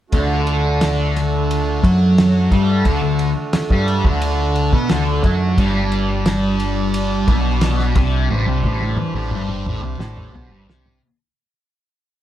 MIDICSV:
0, 0, Header, 1, 5, 480
1, 0, Start_track
1, 0, Tempo, 680272
1, 90, Time_signature, 4, 2, 24, 8
1, 8628, End_track
2, 0, Start_track
2, 0, Title_t, "Harmonium"
2, 0, Program_c, 0, 20
2, 71, Note_on_c, 0, 66, 61
2, 77, Note_on_c, 0, 62, 64
2, 79, Note_on_c, 0, 57, 70
2, 82, Note_on_c, 0, 69, 85
2, 3896, Note_off_c, 0, 66, 0
2, 3899, Note_off_c, 0, 62, 0
2, 3901, Note_off_c, 0, 57, 0
2, 3902, Note_off_c, 0, 69, 0
2, 3931, Note_on_c, 0, 55, 76
2, 3933, Note_on_c, 0, 62, 72
2, 3934, Note_on_c, 0, 67, 75
2, 3941, Note_on_c, 0, 74, 85
2, 5841, Note_off_c, 0, 74, 0
2, 5860, Note_on_c, 0, 72, 80
2, 7744, Note_off_c, 0, 55, 0
2, 7745, Note_off_c, 0, 62, 0
2, 7746, Note_off_c, 0, 67, 0
2, 7756, Note_off_c, 0, 72, 0
2, 8628, End_track
3, 0, Start_track
3, 0, Title_t, "Distorted electric guitar"
3, 0, Program_c, 1, 30
3, 90, Note_on_c, 1, 50, 100
3, 1282, Note_off_c, 1, 50, 0
3, 1295, Note_on_c, 1, 54, 99
3, 1765, Note_off_c, 1, 54, 0
3, 1780, Note_on_c, 1, 55, 96
3, 2008, Note_off_c, 1, 55, 0
3, 2015, Note_on_c, 1, 50, 102
3, 2125, Note_off_c, 1, 50, 0
3, 2141, Note_on_c, 1, 50, 67
3, 2328, Note_off_c, 1, 50, 0
3, 2627, Note_on_c, 1, 55, 100
3, 2852, Note_off_c, 1, 55, 0
3, 2861, Note_on_c, 1, 50, 96
3, 3330, Note_off_c, 1, 50, 0
3, 3338, Note_on_c, 1, 59, 94
3, 3449, Note_off_c, 1, 59, 0
3, 3462, Note_on_c, 1, 50, 108
3, 3691, Note_off_c, 1, 50, 0
3, 3702, Note_on_c, 1, 54, 97
3, 3931, Note_off_c, 1, 54, 0
3, 3941, Note_on_c, 1, 43, 110
3, 5133, Note_off_c, 1, 43, 0
3, 5138, Note_on_c, 1, 47, 106
3, 5611, Note_off_c, 1, 47, 0
3, 5622, Note_on_c, 1, 48, 92
3, 5852, Note_off_c, 1, 48, 0
3, 5858, Note_on_c, 1, 45, 97
3, 5970, Note_off_c, 1, 45, 0
3, 5978, Note_on_c, 1, 48, 100
3, 6090, Note_off_c, 1, 48, 0
3, 6103, Note_on_c, 1, 45, 101
3, 6333, Note_off_c, 1, 45, 0
3, 6338, Note_on_c, 1, 52, 99
3, 6450, Note_off_c, 1, 52, 0
3, 6458, Note_on_c, 1, 45, 95
3, 6570, Note_off_c, 1, 45, 0
3, 6576, Note_on_c, 1, 43, 97
3, 6809, Note_off_c, 1, 43, 0
3, 6827, Note_on_c, 1, 45, 92
3, 6933, Note_off_c, 1, 45, 0
3, 6935, Note_on_c, 1, 48, 100
3, 7048, Note_off_c, 1, 48, 0
3, 7054, Note_on_c, 1, 45, 100
3, 7287, Note_off_c, 1, 45, 0
3, 7292, Note_on_c, 1, 47, 92
3, 7406, Note_off_c, 1, 47, 0
3, 7415, Note_on_c, 1, 43, 94
3, 7528, Note_off_c, 1, 43, 0
3, 7532, Note_on_c, 1, 48, 89
3, 7765, Note_off_c, 1, 48, 0
3, 8628, End_track
4, 0, Start_track
4, 0, Title_t, "Picked electric bass"
4, 0, Program_c, 2, 34
4, 95, Note_on_c, 2, 38, 86
4, 1263, Note_off_c, 2, 38, 0
4, 1295, Note_on_c, 2, 42, 97
4, 1744, Note_off_c, 2, 42, 0
4, 1777, Note_on_c, 2, 43, 90
4, 1997, Note_off_c, 2, 43, 0
4, 2015, Note_on_c, 2, 38, 97
4, 2122, Note_off_c, 2, 38, 0
4, 2127, Note_on_c, 2, 38, 76
4, 2352, Note_off_c, 2, 38, 0
4, 2611, Note_on_c, 2, 43, 89
4, 2835, Note_off_c, 2, 43, 0
4, 2853, Note_on_c, 2, 38, 93
4, 3305, Note_off_c, 2, 38, 0
4, 3337, Note_on_c, 2, 47, 93
4, 3447, Note_off_c, 2, 47, 0
4, 3462, Note_on_c, 2, 38, 98
4, 3682, Note_off_c, 2, 38, 0
4, 3696, Note_on_c, 2, 42, 94
4, 3919, Note_off_c, 2, 42, 0
4, 3934, Note_on_c, 2, 31, 95
4, 5108, Note_off_c, 2, 31, 0
4, 5135, Note_on_c, 2, 35, 96
4, 5588, Note_off_c, 2, 35, 0
4, 5614, Note_on_c, 2, 36, 95
4, 5839, Note_off_c, 2, 36, 0
4, 5862, Note_on_c, 2, 33, 98
4, 5971, Note_off_c, 2, 33, 0
4, 5978, Note_on_c, 2, 36, 90
4, 6089, Note_off_c, 2, 36, 0
4, 6099, Note_on_c, 2, 33, 81
4, 6321, Note_off_c, 2, 33, 0
4, 6326, Note_on_c, 2, 40, 96
4, 6441, Note_off_c, 2, 40, 0
4, 6445, Note_on_c, 2, 33, 92
4, 6555, Note_off_c, 2, 33, 0
4, 6560, Note_on_c, 2, 31, 87
4, 6790, Note_off_c, 2, 31, 0
4, 6809, Note_on_c, 2, 33, 84
4, 6921, Note_off_c, 2, 33, 0
4, 6925, Note_on_c, 2, 36, 88
4, 7038, Note_off_c, 2, 36, 0
4, 7042, Note_on_c, 2, 33, 89
4, 7271, Note_off_c, 2, 33, 0
4, 7285, Note_on_c, 2, 35, 87
4, 7395, Note_off_c, 2, 35, 0
4, 7399, Note_on_c, 2, 31, 84
4, 7518, Note_off_c, 2, 31, 0
4, 7528, Note_on_c, 2, 36, 86
4, 7754, Note_off_c, 2, 36, 0
4, 8628, End_track
5, 0, Start_track
5, 0, Title_t, "Drums"
5, 88, Note_on_c, 9, 51, 88
5, 89, Note_on_c, 9, 36, 94
5, 159, Note_off_c, 9, 51, 0
5, 160, Note_off_c, 9, 36, 0
5, 330, Note_on_c, 9, 51, 68
5, 401, Note_off_c, 9, 51, 0
5, 573, Note_on_c, 9, 51, 101
5, 574, Note_on_c, 9, 38, 106
5, 643, Note_off_c, 9, 51, 0
5, 645, Note_off_c, 9, 38, 0
5, 822, Note_on_c, 9, 51, 69
5, 823, Note_on_c, 9, 38, 31
5, 892, Note_off_c, 9, 51, 0
5, 894, Note_off_c, 9, 38, 0
5, 1064, Note_on_c, 9, 51, 88
5, 1134, Note_off_c, 9, 51, 0
5, 1295, Note_on_c, 9, 36, 95
5, 1300, Note_on_c, 9, 51, 75
5, 1366, Note_off_c, 9, 36, 0
5, 1371, Note_off_c, 9, 51, 0
5, 1540, Note_on_c, 9, 51, 93
5, 1541, Note_on_c, 9, 38, 101
5, 1611, Note_off_c, 9, 51, 0
5, 1612, Note_off_c, 9, 38, 0
5, 1774, Note_on_c, 9, 36, 106
5, 1775, Note_on_c, 9, 51, 70
5, 1845, Note_off_c, 9, 36, 0
5, 1845, Note_off_c, 9, 51, 0
5, 2012, Note_on_c, 9, 51, 90
5, 2014, Note_on_c, 9, 36, 97
5, 2083, Note_off_c, 9, 51, 0
5, 2084, Note_off_c, 9, 36, 0
5, 2251, Note_on_c, 9, 51, 66
5, 2322, Note_off_c, 9, 51, 0
5, 2491, Note_on_c, 9, 51, 99
5, 2493, Note_on_c, 9, 38, 118
5, 2562, Note_off_c, 9, 51, 0
5, 2563, Note_off_c, 9, 38, 0
5, 2615, Note_on_c, 9, 36, 99
5, 2685, Note_off_c, 9, 36, 0
5, 2737, Note_on_c, 9, 51, 59
5, 2807, Note_off_c, 9, 51, 0
5, 2856, Note_on_c, 9, 36, 98
5, 2926, Note_off_c, 9, 36, 0
5, 2975, Note_on_c, 9, 51, 93
5, 3045, Note_off_c, 9, 51, 0
5, 3214, Note_on_c, 9, 51, 60
5, 3285, Note_off_c, 9, 51, 0
5, 3335, Note_on_c, 9, 36, 106
5, 3406, Note_off_c, 9, 36, 0
5, 3453, Note_on_c, 9, 51, 88
5, 3455, Note_on_c, 9, 38, 107
5, 3524, Note_off_c, 9, 51, 0
5, 3525, Note_off_c, 9, 38, 0
5, 3696, Note_on_c, 9, 36, 102
5, 3696, Note_on_c, 9, 51, 63
5, 3766, Note_off_c, 9, 36, 0
5, 3766, Note_off_c, 9, 51, 0
5, 3935, Note_on_c, 9, 36, 99
5, 3936, Note_on_c, 9, 51, 92
5, 4006, Note_off_c, 9, 36, 0
5, 4007, Note_off_c, 9, 51, 0
5, 4175, Note_on_c, 9, 51, 65
5, 4246, Note_off_c, 9, 51, 0
5, 4415, Note_on_c, 9, 51, 94
5, 4416, Note_on_c, 9, 38, 109
5, 4486, Note_off_c, 9, 51, 0
5, 4487, Note_off_c, 9, 38, 0
5, 4655, Note_on_c, 9, 51, 67
5, 4726, Note_off_c, 9, 51, 0
5, 4896, Note_on_c, 9, 51, 98
5, 4967, Note_off_c, 9, 51, 0
5, 5135, Note_on_c, 9, 36, 99
5, 5135, Note_on_c, 9, 51, 67
5, 5205, Note_off_c, 9, 36, 0
5, 5206, Note_off_c, 9, 51, 0
5, 5372, Note_on_c, 9, 51, 95
5, 5373, Note_on_c, 9, 38, 112
5, 5442, Note_off_c, 9, 51, 0
5, 5444, Note_off_c, 9, 38, 0
5, 5497, Note_on_c, 9, 38, 34
5, 5567, Note_off_c, 9, 38, 0
5, 5613, Note_on_c, 9, 51, 76
5, 5615, Note_on_c, 9, 36, 108
5, 5683, Note_off_c, 9, 51, 0
5, 5686, Note_off_c, 9, 36, 0
5, 5857, Note_on_c, 9, 48, 59
5, 5928, Note_off_c, 9, 48, 0
5, 6095, Note_on_c, 9, 36, 67
5, 6165, Note_off_c, 9, 36, 0
5, 6216, Note_on_c, 9, 48, 62
5, 6287, Note_off_c, 9, 48, 0
5, 6328, Note_on_c, 9, 47, 72
5, 6399, Note_off_c, 9, 47, 0
5, 6570, Note_on_c, 9, 47, 70
5, 6640, Note_off_c, 9, 47, 0
5, 6694, Note_on_c, 9, 47, 63
5, 6764, Note_off_c, 9, 47, 0
5, 6818, Note_on_c, 9, 45, 76
5, 6888, Note_off_c, 9, 45, 0
5, 7059, Note_on_c, 9, 38, 82
5, 7129, Note_off_c, 9, 38, 0
5, 7177, Note_on_c, 9, 45, 77
5, 7248, Note_off_c, 9, 45, 0
5, 7306, Note_on_c, 9, 43, 92
5, 7376, Note_off_c, 9, 43, 0
5, 7547, Note_on_c, 9, 38, 93
5, 7617, Note_off_c, 9, 38, 0
5, 7661, Note_on_c, 9, 43, 90
5, 7732, Note_off_c, 9, 43, 0
5, 8628, End_track
0, 0, End_of_file